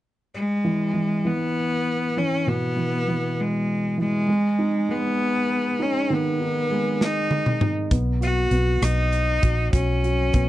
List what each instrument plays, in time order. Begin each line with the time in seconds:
0.35 cello G#3
0.64 felt piano E3
0.93 felt piano E3
1.25 felt piano E3, cello B3
2.17 felt piano E3, cello C#4
2.47 felt piano B2, cello B3
2.77 felt piano E3
3.08 felt piano E3
3.40 cello G#3
3.98 felt piano E3, cello G#3
4.28 felt piano G#3
4.59 felt piano D#4
4.89 felt piano G#3, cello B3
5.79 cello C#4, felt piano D#4
6.10 felt piano D#3, cello B3
6.41 felt piano D#4
6.71 felt piano G#3
7.01 cello D#4, snare
7.31 high tom
7.46 mid tom
7.61 felt piano D#4, mid tom
7.91 fingered electric bass B1, felt piano B3, kick, closed hi-hat
8.21 felt piano F#4, cello F#4, closed hi-hat
8.51 fingered electric bass B1, felt piano B3, closed hi-hat
8.82 fingered electric bass B1, cello D#4, cross-stick, closed hi-hat
9.12 closed hi-hat
9.42 fingered electric bass A#1, felt piano F#4, kick, closed hi-hat
9.73 fingered electric bass B1, felt piano F#3, cello C#4, kick, closed hi-hat
10.04 felt piano F#4, closed hi-hat
10.33 fingered electric bass B1, felt piano B3, kick, closed hi-hat